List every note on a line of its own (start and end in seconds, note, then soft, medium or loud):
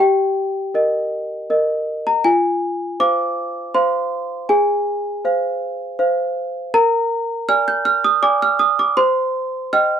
0.00 0.72 G4 medium
0.00 2.06 G5 medium
0.74 1.46 A#4 soft
0.74 1.46 D#5 medium
1.50 2.21 A#4 soft
1.50 2.21 D#5 soft
2.07 2.25 A#5 medium
2.24 2.98 F4 medium
2.24 3.00 G#5 medium
3.00 3.71 C5 soft
3.00 3.71 F5 soft
3.00 3.75 D6 loud
3.75 4.46 C5 soft
3.75 4.46 F5 soft
3.75 4.50 C6 medium
4.49 5.22 G#4 medium
4.49 6.36 G#5 medium
5.25 5.95 C5 soft
5.25 5.95 F5 medium
5.99 6.70 C5 medium
5.99 6.70 F5 medium
6.74 7.46 A#4 medium
6.74 7.48 A#5 loud
7.49 8.19 D5 soft
7.49 8.19 G#5 soft
7.49 7.67 F6 loud
7.68 7.86 G6 medium
7.85 8.04 F6 loud
8.04 8.23 D#6 loud
8.22 8.93 D5 medium
8.22 8.93 G#5 medium
8.22 8.41 D6 loud
8.42 8.61 F6 medium
8.59 8.78 D#6 loud
8.79 8.98 D6 medium
8.97 9.70 C5 medium
8.97 9.73 C6 loud
9.73 10.00 D#5 medium
9.73 10.00 G5 medium
9.73 10.00 F6 loud